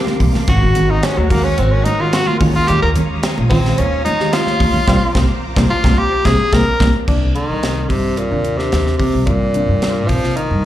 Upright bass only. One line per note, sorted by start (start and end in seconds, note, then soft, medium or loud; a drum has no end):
0.20 0.32 C2 medium
0.35 muted upright bass stroke soft
0.48 0.59 G#1 loud
0.63 0.74 G#1 medium
0.76 0.99 G#1 medium
1.18 1.52 D#2 medium
1.59 1.81 G#1 medium
2.41 2.52 D#2 medium
2.56 muted upright bass stroke soft
2.69 2.80 D#2 loud
2.83 2.94 D#2 medium
2.97 3.19 D#2 medium
3.38 3.72 A#1 medium
3.79 4.02 D#2 loud
4.61 4.72 D#2 medium
4.75 muted upright bass stroke soft
4.88 4.98 C2 medium
5.15 5.26 C2 medium
5.57 5.67 C2 loud
5.84 5.94 C2 loud
6.25 6.36 C2 loud
6.52 6.63 C2 medium
6.80 6.90 C2 medium
7.08 7.30 C2 medium
7.49 7.83 C2 medium
7.90 8.24 G2 medium
8.32 8.65 D#2 medium
8.73 8.84 D#2 medium
9.14 9.25 C2 medium
9.27 9.61 G2 medium
9.69 10.09 G2 medium
10.09 10.32 C3 medium
10.51 10.62 G2 medium